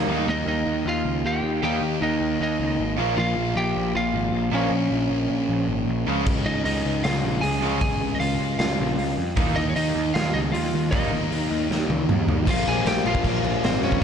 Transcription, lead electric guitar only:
0.30 D#4 D#5
0.48 D#4 D#5
0.88 F4 F5
1.26 G4 G5
1.63 G4 G5
2.02 D#4 D#5
2.41 D#4 D#5
3.18 F4 F5
3.57 G4 G5
3.95 F4 F5
4.54 C#4 C#5
6.46 D#4 D#5
6.65 D#4 D#5
7.04 F4 F5
7.41 G#4 G#5
7.81 G#4 G#5
8.15 D#5
8.20 F4 F5
8.59 F4 F5
9.56 D#4 D#5
9.70 C#5
9.76 D#4 D#5
10.14 F4 F5
10.34 D#4 D#5
10.52 F4 F5
10.91 D#4 D#5
11.69 C#5
12.49 F4 F5
12.67 G#4 G#5
12.87 G4 G5
13.06 F4 F5
13.65 C4 C5
13.84 C#4 C#5

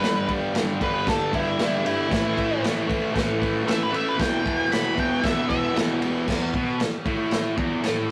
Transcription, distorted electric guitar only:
0.01 G2 D3 G3
0.28 D3 G3
0.54 G2 D3 G3
0.80 G2 D3 G3
1.06 G2 D3 G3
1.32 D3 G3
1.57 G2 D3 G3
1.83 G2 D3 G3
2.09 A2 E3 A3
2.34 E3 A3
2.61 A2 E3 A3
2.87 A2 E3 A3
3.11 A2 E3 A3
3.39 E3 A3
3.63 A2 E3 A3
3.90 A2 E3 A3
4.16 E2 B2 E3
4.42 B2 E3
4.69 E2 B2 E3
4.94 E2 B2 E3
5.20 E2 B2 E3
5.47 B2 E3
5.73 E2 B2 E3
6.00 E2 B2 E3
6.28 E2
6.55 B2
6.80 muted distorted electric guitar stroke
7.05 A2
7.57 E2
7.83 A2

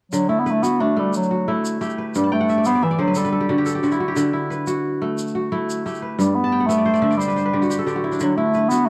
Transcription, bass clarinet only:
0.12 F#3
0.28 A3
0.40 B3
0.51 A3
0.63 B3
0.81 A3
0.99 G3
1.16 F#3
2.17 G3
2.33 A3
2.67 B3
2.84 E3
3.01 F#3
3.18 G3
6.20 G3
6.35 B3
6.67 A3
7.17 G3
8.21 F#3
8.36 A3
8.69 B3
8.86 A3

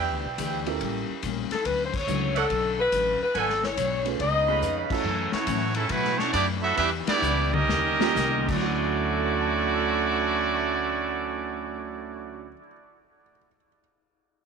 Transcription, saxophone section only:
1.52 A4
1.66 B4
1.86 C5
1.97 C#5
2.38 A4
2.80 B4
3.23 B4
3.37 A4
3.65 C#5
4.21 D#5

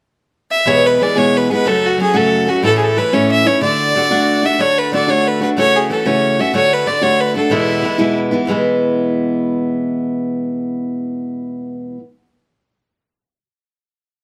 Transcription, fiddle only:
0.51 E5
0.68 C#5
0.86 B4
1.03 D5
1.18 C#5
1.37 B4
1.52 B4
1.67 A4
1.86 F#4
2.02 G#4
2.17 A4
2.49 F#4
2.65 A4
2.77 G#4
2.83 A4
2.98 B4
3.13 C#5
3.31 E5
3.47 C#5
3.62 D5
4.46 E5
4.61 C#5
4.78 B4
4.94 D5
5.10 C#5
5.27 B4
5.43 B4
5.58 C#5
5.76 G#4
5.92 A4
6.07 C#5
6.40 E5
6.55 C#5
6.73 B4
6.87 D5
7.03 C#5
7.21 B4
7.36 A4
7.52 E4

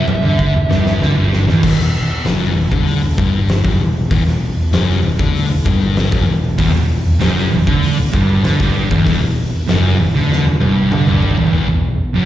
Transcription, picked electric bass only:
0.08 E1
0.23 D2
0.54 E1
0.70 G1
1.01 D2
1.17 G1
1.48 E1
1.63 E1
1.79 E1
2.26 F#1
2.56 E1
2.71 D2
3.02 E1
3.18 G1
3.65 F#1
3.79 E1
4.11 E1
4.25 E1
4.71 F#1
5.02 E1
5.19 D2
5.49 E1
5.66 G1
6.12 F#1
6.27 E1
6.59 E1
6.73 E1
7.19 F#1
7.50 E1
7.67 D2
7.98 E1
8.13 G1
8.44 D2
8.60 G1
8.91 E1
9.06 E1
9.22 E1
9.69 F#1
10.00 E1
10.16 D2
10.46 E1
10.61 G1
10.92 D2
11.08 G1
11.38 E1
11.54 E1
11.69 E1
12.15 F#1

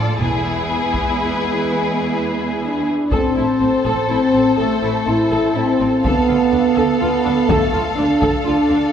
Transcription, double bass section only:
0.20 E1
3.12 A1
3.36 A1
3.61 A1
3.85 A1
4.09 A1
4.34 A1
4.58 A1
4.82 A1
5.06 A1
5.31 A1
5.55 A1
5.80 A1
6.04 D2
6.28 D2
6.52 D2
6.78 D2
7.02 D2
7.26 D2
7.49 D2
7.73 D2
7.97 D2
8.22 D2
8.46 D2
8.69 D2

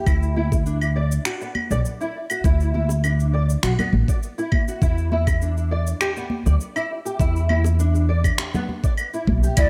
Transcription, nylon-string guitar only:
0.06 E4
0.36 E4
0.66 D4
0.96 D5
1.25 F#4
1.41 B3
1.71 D5
2.01 E4
2.30 F#4
2.44 E4
2.74 E4
3.04 D4
3.33 D5
3.63 F#4
3.79 B3
4.09 D5
4.38 E4
4.68 F#4
4.82 E4
5.12 E4
5.42 D4
5.71 D5
6.01 G4
6.16 B3
6.46 D5
6.76 E4
7.05 G4
7.19 E4
7.49 E4
7.79 D4
8.09 D5
8.38 G4
8.54 B3
8.84 D5
9.14 E4
9.43 G4
9.57 E4

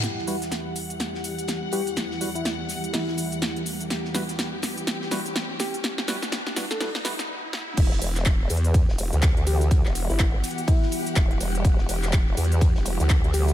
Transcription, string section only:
0.03 E2 E3 G3 F#5
3.91 G4
7.77 E3 B3 F#4 G4

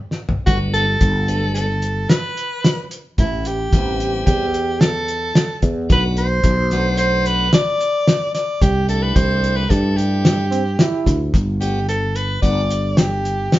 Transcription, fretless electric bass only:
0.47 G1
1.01 G1
3.19 A1
3.73 A1
4.27 E2
5.63 E2
5.90 B1
6.44 B1
8.62 C2
9.16 C2
9.71 G2
11.07 D2
11.34 G1
12.42 G1

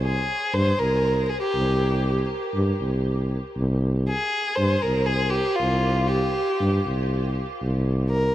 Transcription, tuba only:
Already playing: C2
0.54 G2
0.80 C2
1.54 C2
2.55 G2
2.81 C2
3.57 C2
4.59 G2
4.84 C2
5.61 C2
6.61 G2
6.86 C2
7.62 C2

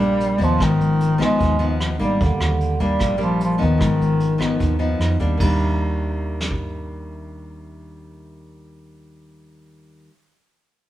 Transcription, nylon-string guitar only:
Already playing: A#2 G3
0.00 A#3 D4
0.38 F3 B3 D#4
0.58 G#2
1.18 F3 B3 D#4
1.39 D#3
1.59 F3 B3 D#4
1.99 G3 A#3 D4
2.80 G3 A#3 D4
2.99 A#2
3.18 G3 A#3 D4
3.58 F3 B3 D#4
3.78 G#2
4.38 F3 B3 D#4
4.59 D#3
4.79 F3 B3 D#4
5.20 G3 A#3 D4
5.38 D#3 G3
5.42 A#3 D4

